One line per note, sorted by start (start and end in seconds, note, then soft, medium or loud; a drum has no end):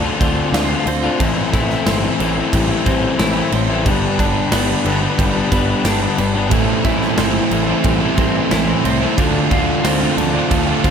0.00 1.20 D3 medium
0.00 1.19 A3 medium
0.00 0.20 C4 medium
0.00 1.17 D4 medium
0.00 0.52 F4 medium
0.00 0.22 F4 medium
0.00 3.82 A4 medium
0.00 1.17 F5 medium
0.00 3.82 C6 loud
0.05 0.21 A3 medium
0.05 0.21 D4 medium
0.21 0.41 D2 medium
0.21 0.52 D3 medium
0.21 0.52 A3 medium
0.21 0.86 C4 medium
0.21 0.54 D4 medium
0.21 0.54 F4 medium
0.21 kick loud
0.21 crash medium
0.52 0.73 D2 medium
0.52 0.86 D3 medium
0.52 0.71 A3 loud
0.52 0.70 D4 loud
0.52 0.68 F4 loud
0.52 snare loud
0.52 crash medium
0.69 0.86 A3 medium
0.69 0.87 D4 medium
0.69 0.87 F4 medium
0.86 1.07 D2 loud
0.86 1.20 C4 medium
0.86 muted overdriven electric guitar stroke soft
0.86 crash medium
1.03 1.19 A3 medium
1.03 1.18 D4 medium
1.03 1.18 F4 medium
1.20 1.41 A1 medium
1.20 1.86 A2 medium
1.20 1.52 E3 loud
1.20 1.53 A3 loud
1.20 1.54 C4 loud
1.20 3.83 E4 medium
1.20 1.55 E4 loud
1.20 9.14 G5 medium
1.20 kick loud
1.20 crash medium
1.53 1.74 A1 loud
1.53 1.86 E3 medium
1.53 1.87 A3 loud
1.53 1.87 C4 medium
1.53 1.88 E4 medium
1.53 kick medium
1.53 crash medium
1.70 snare soft
1.86 2.07 G1 loud
1.86 2.36 A2 loud
1.86 2.19 E3 loud
1.86 2.04 A3 loud
1.86 2.03 C4 loud
1.86 2.02 E4 loud
1.86 snare loud
1.86 crash medium
2.03 2.20 A3 medium
2.03 2.21 C4 medium
2.03 2.21 E4 medium
2.20 2.40 A1 medium
2.20 2.70 E3 medium
2.20 2.38 A3 medium
2.20 2.37 C4 medium
2.20 2.36 E4 loud
2.20 crash medium
2.37 2.71 A3 medium
2.37 2.70 C4 medium
2.37 2.68 E4 medium
2.53 2.74 A1 medium
2.53 5.18 G3 medium
2.53 kick loud
2.53 crash medium
2.70 2.86 A3 medium
2.70 2.87 C4 medium
2.70 2.88 E4 medium
2.86 3.07 A1 medium
2.86 3.19 E3 medium
2.86 3.19 A3 medium
2.86 3.20 C4 medium
2.86 3.21 E4 medium
2.86 kick loud
2.86 crash medium
3.19 3.40 A1 medium
3.19 3.69 A2 medium
3.19 3.52 E3 loud
3.19 3.37 A3 loud
3.19 3.36 C4 loud
3.19 3.35 E4 loud
3.19 snare loud
3.19 crash medium
3.36 3.52 A3 medium
3.36 3.53 C4 medium
3.36 3.53 E4 medium
3.52 3.87 A1 medium
3.52 3.86 C4 medium
3.52 muted overdriven electric guitar stroke soft
3.52 crash medium
3.69 3.85 A3 medium
3.69 3.84 C4 medium
3.69 3.83 E4 medium
3.85 4.06 G1 medium
3.85 4.50 G2 loud
3.85 4.17 D3 loud
3.85 4.19 G3 loud
3.85 4.19 B3 loud
3.85 6.49 D4 medium
3.85 4.20 D4 loud
3.85 6.49 B4 medium
3.85 6.49 B5 loud
3.85 kick loud
3.85 crash medium
4.19 4.40 G1 medium
4.19 4.51 D3 medium
4.19 4.52 G3 medium
4.19 4.52 B3 medium
4.19 4.52 D4 loud
4.19 kick medium
4.19 crash medium
4.51 4.73 G1 medium
4.51 5.01 G2 loud
4.51 4.83 D3 loud
4.51 4.70 G3 loud
4.51 4.69 B3 loud
4.51 4.67 D4 loud
4.51 snare loud
4.51 crash loud
4.68 4.85 G3 medium
4.68 4.85 B3 medium
4.68 4.86 D4 medium
4.85 5.06 G1 medium
4.85 5.35 D3 medium
4.85 5.02 G3 medium
4.85 5.01 B3 medium
4.85 5.00 D4 medium
4.85 crash medium
5.01 5.35 G3 medium
5.01 5.34 B3 medium
5.01 5.33 D4 medium
5.19 5.39 G1 loud
5.19 6.51 G3 medium
5.19 kick loud
5.19 crash medium
5.34 5.51 G3 medium
5.34 5.51 B3 medium
5.34 5.52 D4 medium
5.51 5.73 G1 medium
5.51 5.84 D3 medium
5.51 5.85 G3 medium
5.51 5.85 B3 medium
5.51 5.85 D4 medium
5.51 kick loud
5.51 crash medium
5.84 6.06 G1 medium
5.84 6.35 G2 loud
5.84 6.18 D3 loud
5.84 6.03 G3 loud
5.84 6.02 B3 loud
5.84 6.01 D4 loud
5.84 snare loud
5.84 crash loud
6.02 6.18 G3 medium
6.02 6.19 B3 medium
6.02 6.19 D4 medium
6.18 6.51 G1 loud
6.18 6.52 B3 medium
6.18 muted overdriven electric guitar stroke medium
6.18 crash medium
6.35 6.51 G3 medium
6.35 6.50 B3 medium
6.35 6.50 D4 medium
6.51 6.72 A1 medium
6.51 7.17 A2 medium
6.51 6.83 E3 loud
6.51 6.85 A3 loud
6.51 6.86 C4 loud
6.51 9.15 E4 medium
6.51 6.85 E4 medium
6.51 10.90 A4 medium
6.51 10.90 C6 loud
6.51 kick loud
6.51 crash medium
6.84 7.06 A1 loud
6.84 7.17 E3 medium
6.84 7.19 A3 medium
6.84 7.20 C4 medium
6.84 7.19 E4 loud
6.84 kick medium
6.84 crash medium
7.02 snare soft
7.17 7.39 G1 medium
7.17 7.68 A2 loud
7.17 7.50 E3 loud
7.17 7.36 A3 medium
7.17 7.35 C4 loud
7.17 7.33 E4 loud
7.17 snare loud
7.17 crash medium
7.34 7.51 A3 medium
7.34 7.52 C4 medium
7.34 7.53 E4 medium
7.51 7.72 A1 medium
7.51 8.01 E3 medium
7.51 7.69 A3 medium
7.51 7.68 C4 medium
7.51 7.66 E4 medium
7.51 muted distorted electric guitar stroke medium
7.51 crash medium
7.67 8.03 A3 medium
7.67 8.02 C4 medium
7.67 7.99 E4 medium
7.84 8.05 A1 medium
7.84 9.17 G3 medium
7.84 kick loud
7.84 crash medium
8.01 8.18 A3 medium
8.01 8.19 C4 medium
8.01 8.19 E4 medium
8.18 8.39 A1 medium
8.18 8.51 E3 medium
8.18 8.52 A3 medium
8.18 8.53 C4 medium
8.18 8.53 E4 medium
8.18 kick loud
8.18 crash medium
8.51 8.72 A1 loud
8.51 9.01 A2 medium
8.51 8.84 E3 loud
8.51 8.70 A3 loud
8.51 8.69 C4 loud
8.51 8.66 E4 loud
8.51 snare loud
8.51 crash medium
8.68 8.85 A3 medium
8.68 8.85 C4 medium
8.68 8.84 E4 medium
8.83 9.05 C2 loud
8.83 9.15 E3 medium
8.83 9.02 A3 medium
8.83 9.01 C4 medium
8.83 9.21 C4 medium
8.83 8.99 E4 medium
8.83 muted overdriven electric guitar stroke soft
8.83 crash medium
9.00 9.18 A3 medium
9.00 9.18 C4 medium
9.00 9.15 E4 medium
9.16 9.39 D2 medium
9.16 9.49 D3 loud
9.16 9.50 A3 loud
9.16 10.90 D4 medium
9.16 9.50 D4 loud
9.16 9.51 F4 loud
9.16 10.90 F5 medium
9.16 kick loud
9.16 crash medium
9.50 9.72 D2 loud
9.50 9.82 D3 medium
9.50 9.84 A3 medium
9.50 9.84 D4 medium
9.50 9.85 F4 medium
9.50 kick medium
9.50 crash medium
9.83 10.05 D2 medium
9.83 10.15 D3 loud
9.83 10.02 A3 loud
9.83 10.83 C4 medium
9.83 10.01 D4 loud
9.83 9.99 F4 loud
9.83 snare loud
9.83 crash loud
10.01 10.17 A3 medium
10.01 10.17 D4 medium
10.01 10.18 F4 medium
10.17 10.38 D2 medium
10.17 10.67 D3 medium
10.17 10.35 A3 medium
10.17 10.33 D4 medium
10.17 10.32 F4 loud
10.17 muted distorted electric guitar stroke soft
10.17 crash medium
10.33 10.68 A3 medium
10.33 10.67 D4 medium
10.33 10.66 F4 medium
10.50 10.72 D2 loud
10.50 10.90 A3 medium
10.50 kick loud
10.50 crash medium
10.67 10.83 A3 medium
10.67 10.83 D4 medium
10.67 10.84 F4 medium
10.83 10.90 D2 medium
10.83 10.90 D3 medium
10.83 10.90 A3 medium
10.83 10.90 C4 medium
10.83 10.90 D4 medium
10.83 10.90 F4 medium
10.83 kick loud
10.83 crash medium